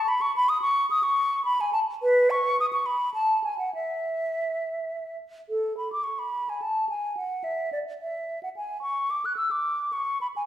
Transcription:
0.08 0.23 B5 medium
0.21 0.34 C#6 medium
0.36 0.50 B5 loud
0.49 0.61 D#6 medium
0.62 0.89 C#6 medium
0.91 1.05 D#6 medium
1.03 1.44 C#6 medium
1.45 1.62 B5 medium
1.61 1.72 G#5 medium
1.73 1.79 A5 medium
2.03 2.32 B4 medium
2.30 2.59 C#6 medium
2.60 2.66 D#6 medium
2.73 2.87 C#6 medium
2.86 3.14 B5 medium
3.14 3.43 A5 medium
3.44 3.58 G#5 medium
3.59 3.73 F#5 medium
3.75 5.18 E5 medium
5.50 5.77 A4 medium
5.77 5.91 B5 soft
5.93 6.05 D6 medium
6.04 6.20 C#6 soft
6.19 6.51 B5 medium
6.49 6.63 G#5 soft
6.62 6.89 A5 medium
6.89 7.16 G#5 soft
7.17 7.45 F#5 medium
7.44 7.72 E5 medium
7.73 7.79 D5 soft
8.00 8.41 E5 medium
8.43 8.49 F#5 medium
8.57 8.81 G#5 medium
8.82 9.12 C#6 medium
9.10 9.27 D6 medium
9.25 9.36 F#6 medium
9.37 9.53 E6 medium
9.51 9.94 D6 medium
9.93 10.21 C#6 medium
10.21 10.27 B5 medium
10.36 10.42 G#5 medium

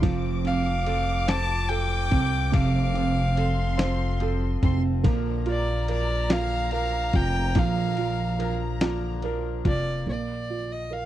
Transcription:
0.02 2.08 F1 loud
0.02 2.49 F3 medium
0.02 0.45 F3 medium
0.02 0.45 C4 medium
0.02 0.46 F4 medium
0.02 0.44 A4 medium
0.02 3.34 D6 loud
0.02 kick loud
0.02 ride medium
0.44 2.08 C4 medium
0.44 0.87 C4 soft
0.44 0.87 F4 soft
0.44 0.87 A4 medium
0.44 1.30 F5 medium
0.44 ride soft
0.86 1.29 F3 medium
0.86 1.28 C4 medium
0.86 1.27 F4 medium
0.86 1.68 A4 medium
0.86 1.27 A4 medium
0.86 ride soft
1.27 1.69 F3 medium
1.27 1.70 C4 medium
1.27 1.70 F4 medium
1.27 1.70 A4 medium
1.27 2.91 C5 medium
1.27 1.71 A5 loud
1.27 snare loud
1.27 ride medium
1.69 2.12 F3 medium
1.69 2.13 C4 medium
1.69 2.11 F4 medium
1.69 3.33 A4 medium
1.69 2.10 A4 medium
1.69 2.56 G5 loud
1.69 ride soft
2.11 2.51 C2 medium
2.11 2.92 C4 medium
2.11 2.52 C4 soft
2.11 2.53 F4 soft
2.11 2.53 A4 medium
2.11 kick medium
2.11 ride soft
2.52 4.59 F1 loud
2.52 5.00 C3 medium
2.52 2.95 F3 medium
2.52 2.96 C4 medium
2.52 2.95 F4 medium
2.52 2.94 A4 medium
2.52 4.21 F5 medium
2.52 kick loud
2.52 ride medium
2.94 4.58 C4 medium
2.94 3.37 F4 soft
2.94 3.37 A4 soft
2.94 ride soft
2.98 3.36 C4 soft
3.36 3.79 F3 medium
3.36 3.78 C4 medium
3.36 3.77 F4 medium
3.36 4.20 A4 medium
3.36 3.76 A4 medium
3.36 4.60 C6 loud
3.36 ride soft
3.78 4.19 F3 medium
3.78 4.20 C4 medium
3.78 4.21 F4 medium
3.78 4.20 A4 medium
3.78 5.00 C5 medium
3.78 snare loud
3.78 ride medium
4.20 4.63 F3 medium
4.20 4.63 C4 medium
4.20 4.63 F4 medium
4.20 5.02 A4 medium
4.20 4.62 A4 medium
4.20 ride soft
4.62 5.02 F1 medium
4.62 5.03 C4 medium
4.62 5.05 C4 soft
4.62 5.05 F4 medium
4.62 5.05 A4 medium
4.62 4.81 C6 medium
4.62 kick medium
4.62 ride soft
5.03 7.10 A#1 loud
5.03 5.46 A#2 medium
5.03 5.47 D3 medium
5.03 5.47 F3 medium
5.03 7.51 A#3 medium
5.03 5.47 A#3 medium
5.03 5.47 D4 medium
5.03 5.46 A#4 loud
5.03 8.36 A#5 loud
5.03 kick loud
5.03 ride medium
5.46 5.88 F3 soft
5.46 5.89 A#3 soft
5.46 5.89 D4 medium
5.46 6.28 F4 medium
5.46 5.89 A#4 medium
5.46 5.87 D5 medium
5.46 ride soft
5.88 6.30 F3 medium
5.88 6.31 A#3 medium
5.88 6.30 D4 medium
5.88 6.71 A#4 medium
5.88 6.30 A#4 medium
5.88 6.34 D5 medium
5.88 ride soft
6.29 6.73 D3 medium
6.29 6.71 F3 medium
6.29 6.72 A#3 medium
6.29 6.72 D4 medium
6.29 7.12 F4 medium
6.29 6.73 A#4 medium
6.29 6.72 F5 medium
6.29 snare loud
6.29 ride medium
6.33 6.74 A#2 medium
6.71 7.14 F3 medium
6.71 7.14 A#3 medium
6.71 7.14 D4 medium
6.71 8.35 A#4 medium
6.71 7.12 A#4 medium
6.71 7.17 F5 medium
6.71 ride soft
7.13 7.53 F1 medium
7.13 7.55 F3 soft
7.13 7.55 A#3 soft
7.13 7.55 D4 medium
7.13 7.96 F4 medium
7.13 7.56 A#4 medium
7.13 7.60 G5 medium
7.13 kick medium
7.13 ride soft
7.55 9.61 A#1 loud
7.55 7.97 A#2 medium
7.55 7.97 D3 medium
7.55 7.98 F3 medium
7.55 10.03 F3 medium
7.55 7.98 A#3 medium
7.55 7.97 D4 medium
7.55 7.96 A#4 medium
7.55 8.51 F5 loud
7.55 kick loud
7.55 ride medium
7.97 8.38 F3 soft
7.97 8.39 A#3 soft
7.97 8.40 D4 soft
7.97 8.79 F4 medium
7.97 8.39 A#4 medium
7.97 ride soft
8.39 8.81 F3 medium
8.39 8.81 A#3 medium
8.39 8.81 D4 medium
8.39 9.22 A#4 medium
8.39 8.80 A#4 medium
8.39 9.62 A#5 medium
8.39 ride soft
8.81 9.24 A#2 medium
8.81 9.24 D3 medium
8.81 9.22 F3 medium
8.81 9.23 A#3 medium
8.81 9.23 D4 medium
8.81 9.63 F4 medium
8.81 9.23 A#4 medium
8.81 snare loud
8.81 ride medium
9.22 9.65 F3 medium
9.22 9.66 A#3 medium
9.22 9.65 D4 medium
9.22 10.05 A#4 medium
9.22 9.64 A#4 medium
9.22 ride soft
9.65 10.05 F1 medium
9.65 10.08 F3 soft
9.65 10.08 A#3 medium
9.65 10.07 D4 medium
9.65 10.06 F4 medium
9.65 10.07 A#4 medium
9.65 10.05 D5 medium
9.65 kick medium
9.65 ride soft
10.06 11.05 A#1 medium
10.06 11.05 A#3 soft
10.06 10.73 D5 medium
10.50 11.05 F4 soft
10.72 10.95 D#5 medium
10.91 11.05 A#4 soft
10.91 11.05 F5 medium

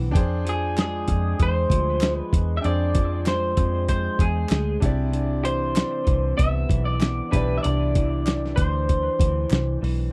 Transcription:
0.00 0.15 B1 medium
0.00 0.21 E3 medium
0.00 0.21 B3 medium
0.00 0.14 D4 medium
0.11 1.04 F2 loud
0.11 2.59 D4 medium
0.11 2.64 D4 medium
0.11 2.60 G#4 medium
0.11 2.60 G5 medium
0.11 kick loud
0.16 2.61 C5 medium
0.16 closed hi-hat medium
0.45 1.08 F3 medium
0.45 closed hi-hat medium
0.49 0.80 G#4 medium
0.77 1.38 G#3 medium
0.77 1.37 G#4 medium
0.77 snare medium
0.77 clap medium
0.77 closed hi-hat medium
1.08 1.33 F2 medium
1.08 kick medium
1.08 closed hi-hat medium
1.39 1.65 E2 loud
1.39 2.00 G#3 medium
1.39 2.17 C5 loud
1.39 kick medium
1.39 closed hi-hat medium
1.70 2.20 D2 medium
1.70 2.33 F3 medium
1.70 kick medium
1.70 closed hi-hat medium
2.01 3.25 G#3 medium
2.01 snare loud
2.01 clap medium
2.01 closed hi-hat loud
2.17 2.55 B4 loud
2.33 2.58 E2 medium
2.33 kick loud
2.33 closed hi-hat medium
2.57 4.77 D4 medium
2.57 2.64 E5 medium
2.62 3.54 F2 loud
2.62 5.13 D4 medium
2.62 4.79 G#4 medium
2.62 4.79 C5 medium
2.62 3.28 D5 medium
2.62 4.78 G5 medium
2.62 closed hi-hat medium
2.95 3.55 F3 medium
2.95 kick loud
2.95 closed hi-hat medium
3.26 3.87 G#3 medium
3.26 3.88 C5 medium
3.26 snare medium
3.26 clap medium
3.26 closed hi-hat medium
3.57 4.08 F2 loud
3.57 4.20 F3 medium
3.57 kick loud
3.57 closed hi-hat medium
3.88 4.51 G#3 medium
3.88 4.21 C5 loud
3.88 kick medium
3.88 closed hi-hat medium
4.19 4.44 E2 medium
4.19 4.79 G#4 medium
4.19 kick medium
4.19 closed hi-hat medium
4.49 4.76 D2 medium
4.49 4.90 G#3 medium
4.49 snare loud
4.49 clap medium
4.49 closed hi-hat medium
4.80 5.82 C2 medium
4.80 5.11 C3 medium
4.80 7.27 D4 medium
4.80 7.28 E4 medium
4.80 7.29 G4 medium
4.80 kick loud
4.80 closed hi-hat medium
4.85 7.30 D5 medium
5.12 7.63 C3 medium
5.12 7.63 D4 medium
5.12 closed hi-hat medium
5.44 6.03 E3 medium
5.44 6.35 C5 loud
5.44 closed hi-hat medium
5.76 snare loud
5.76 clap medium
5.76 closed hi-hat medium
6.05 6.32 C2 loud
6.05 6.67 E3 medium
6.05 kick medium
6.05 closed hi-hat medium
6.37 6.64 C2 loud
6.37 6.99 B3 medium
6.37 6.85 E5 loud
6.37 kick medium
6.37 closed hi-hat medium
6.69 7.20 B1 medium
6.69 7.30 E3 medium
6.69 kick medium
6.69 closed hi-hat medium
6.85 7.33 D5 loud
7.00 8.26 B3 medium
7.00 snare loud
7.00 clap medium
7.00 closed hi-hat medium
7.31 7.58 B1 medium
7.31 7.94 E3 medium
7.31 9.78 D4 medium
7.31 9.78 E4 medium
7.31 9.79 G4 medium
7.31 7.55 B4 medium
7.31 kick medium
7.31 closed hi-hat medium
7.36 9.80 D5 medium
7.58 7.62 E5 medium
7.63 8.54 C2 loud
7.63 10.12 D4 medium
7.63 8.55 D5 medium
7.63 closed hi-hat loud
7.95 8.56 E3 medium
7.95 kick medium
7.95 closed hi-hat medium
8.27 snare medium
8.27 clap medium
8.27 closed hi-hat medium
8.46 snare soft
8.56 9.08 D2 medium
8.56 9.19 E3 medium
8.56 9.78 C5 medium
8.56 kick medium
8.56 closed hi-hat medium
8.89 kick medium
8.89 closed hi-hat medium
9.19 9.44 D2 medium
9.19 9.81 E3 medium
9.19 kick medium
9.19 closed hi-hat medium
9.50 9.76 C2 medium
9.50 snare loud
9.50 clap medium
9.50 closed hi-hat medium
9.82 10.08 B1 medium
9.82 10.12 E3 medium
9.82 open hi-hat medium

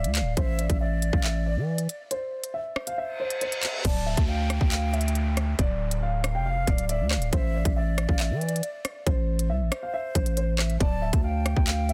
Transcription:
0.00 0.34 D5 medium
0.00 0.14 E5 medium
0.04 0.22 D2 loud
0.04 closed hi-hat medium
0.15 0.36 F5 medium
0.15 clap loud
0.15 closed hi-hat medium
0.21 0.36 D1 loud
0.37 0.68 A1 loud
0.37 0.58 C5 loud
0.37 0.78 E5 loud
0.37 kick loud
0.37 closed hi-hat medium
0.59 0.79 D5 medium
0.59 closed hi-hat medium
0.70 1.11 A1 loud
0.70 kick medium
0.70 closed hi-hat medium
0.81 2.07 D5 loud
0.81 1.11 E5 medium
1.02 closed hi-hat medium
1.13 1.58 A1 loud
1.13 1.23 F5 medium
1.13 kick loud
1.24 1.44 E5 medium
1.24 clap loud
1.46 2.07 D5 medium
1.57 1.88 E3 loud
1.78 closed hi-hat medium
1.89 closed hi-hat medium
2.11 2.52 C5 medium
2.11 closed hi-hat medium
2.44 closed hi-hat medium
2.54 2.85 E5 medium
2.76 3.59 C5 medium
2.76 cross-stick loud
2.87 2.97 F5 medium
2.87 closed hi-hat medium
2.98 3.18 E5 medium
2.98 reverse cymbal medium
3.20 3.40 C5 medium
3.30 closed hi-hat medium
3.41 3.82 C5 medium
3.41 closed hi-hat medium
3.52 closed hi-hat medium
3.63 3.84 E5 medium
3.63 clap loud
3.63 closed hi-hat medium
3.84 4.16 D1 loud
3.84 4.05 D5 loud
3.84 4.26 A5 loud
3.84 kick loud
3.84 closed hi-hat medium
3.84 crash loud
3.84 downlifter medium
4.06 4.27 E5 medium
4.17 4.59 D2 loud
4.17 kick loud
4.17 closed hi-hat medium
4.28 4.59 F5 medium
4.28 5.55 G5 medium
4.50 cross-stick loud
4.50 closed hi-hat medium
4.61 5.55 D2 loud
4.61 4.71 G5 medium
4.61 kick loud
4.72 4.92 F5 medium
4.72 clap loud
4.72 closed hi-hat medium
4.93 5.55 E5 medium
4.93 closed hi-hat soft
5.01 closed hi-hat medium
5.08 closed hi-hat medium
5.15 closed hi-hat medium
5.37 cross-stick medium
5.37 closed hi-hat medium
5.59 6.36 D1 loud
5.59 6.00 D5 loud
5.59 kick loud
5.59 closed hi-hat medium
5.91 closed hi-hat medium
6.03 6.33 F5 medium
6.24 6.85 F5 medium
6.24 cross-stick loud
6.24 closed hi-hat medium
6.35 6.66 F1 loud
6.35 6.45 G5 medium
6.46 6.66 F5 medium
6.67 7.02 D1 loud
6.67 6.88 D5 medium
6.67 kick medium
6.67 closed hi-hat medium
6.78 closed hi-hat medium
6.89 7.30 D5 medium
6.89 7.10 E5 medium
6.89 closed hi-hat medium
7.00 7.18 D2 loud
7.11 7.32 F5 medium
7.11 cross-stick medium
7.11 clap loud
7.16 7.32 D1 loud
7.22 closed hi-hat medium
7.33 7.64 A1 loud
7.33 7.53 C5 loud
7.33 7.74 E5 loud
7.33 kick loud
7.33 closed hi-hat medium
7.54 7.75 D5 medium
7.65 8.07 A1 loud
7.65 kick medium
7.65 closed hi-hat medium
7.76 9.03 D5 loud
7.76 8.07 E5 medium
7.98 cross-stick loud
7.98 closed hi-hat medium
8.09 8.32 A1 loud
8.09 8.19 F5 medium
8.09 kick loud
8.20 8.40 E5 loud
8.20 clap loud
8.20 closed hi-hat medium
8.30 8.61 E3 loud
8.41 9.03 D5 medium
8.41 closed hi-hat soft
8.49 closed hi-hat medium
8.56 closed hi-hat medium
8.63 closed hi-hat medium
8.85 cross-stick medium
8.85 closed hi-hat medium
9.06 9.51 A1 loud
9.06 9.47 C5 medium
9.06 kick loud
9.06 closed hi-hat medium
9.39 closed hi-hat medium
9.50 9.62 C2 loud
9.50 9.80 E5 medium
9.61 9.71 A1 loud
9.72 10.55 C5 medium
9.72 cross-stick loud
9.72 closed hi-hat medium
9.83 9.93 F5 medium
9.94 10.14 E5 medium
10.15 10.78 A1 loud
10.15 10.36 C5 medium
10.15 kick loud
10.15 closed hi-hat medium
10.26 closed hi-hat medium
10.37 10.78 C5 medium
10.37 closed hi-hat medium
10.59 10.79 E5 medium
10.59 cross-stick medium
10.59 clap loud
10.70 closed hi-hat soft
10.80 11.12 D1 loud
10.80 11.01 D5 loud
10.80 11.21 A5 loud
10.80 kick loud
10.80 closed hi-hat medium
11.02 11.22 E5 medium
11.13 11.55 D2 loud
11.13 kick loud
11.13 closed hi-hat medium
11.24 11.55 F5 medium
11.24 11.93 G5 medium
11.46 cross-stick loud
11.46 closed hi-hat medium
11.56 11.93 D2 loud
11.56 11.67 G5 medium
11.56 kick loud
11.67 11.88 F5 medium
11.67 clap loud
11.67 closed hi-hat medium
11.89 11.93 E5 medium
11.89 closed hi-hat soft

